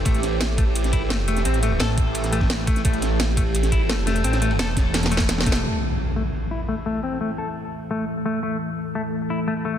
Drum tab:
CC |------------------------------------------------------------------------------------------------|------------------------------------------------------------------------------------------------|------------------------------------------------------------------------------------------------|------------------------------------------------------------------------------------------------|
RD |x-----------x-----------x-----------x-----------x-----------x-----------x-----------x-----------|x-----------x-----------x-----------x-----------x-----------x-----------x-----------x-----------|x-----------x-----------x-----------x-----------x-----------x-----------x-----------x-----------|x-----x-----------x-----x-----------x-----------x-----x--x--x-----------x-----x-----x-----------|
HH |x-----x-----x-----------x-----------x-----------x-----x-----x-----------x-----------x-----x-----|x-----x-----x-----------x-----------x-----------x-----x-----x-----------x-----------x-----x-----|x-----x-----x-----------x-----------x-----------x-----x-----x-----------x-----------x-----x-----|x-----x-----x-----------x-----------x-----------x-----x-----x-----x-----x-----------x-----x-----|
SD |------------o-----------o-----------------------------o-----------------o-----------------o-----|------------------------o-----------------------------o-----------o-----o-----------------o-----|------------o-----------o-----------------------------o-----------------o-----------o-----------|------o-----------------o-----------o-----------o-----o-oo------o-------o-----o-o---o---o-------|
BD |o-----------------------------------o-----------------------o-----------------------------------|------------------------------------o-----------------------------o-----------------o-----------|o-----------------------------------o-----------------------o-----------------------------------|------------------------------------o-----------------------------o-----------------o-----------|

CC |x-----------------------------------------------------------------------------------------------|------------------------------------------------------------------------------------------------|------------------------------------------------------------------------------------------------|
RD |------------------------------------------------------------------------------------------------|------------------------------------------------------------------------------------------------|------------------------------------------------------------------------------------------------|
HH |------------------------------------------------------------------------------------------------|------------------------------------------------------------------------------------------------|------------------------------------------------------------------------------------------------|
SD |------------------------------------------------------------------------------------------------|------------------------------------------------------------------------------------------------|------------------------------------------------------------------------------------------------|
BD |------------------------------------------------------------------------------------------------|------------------------------------------------------------------------------------------------|------------------------------------------------------------------------------------------------|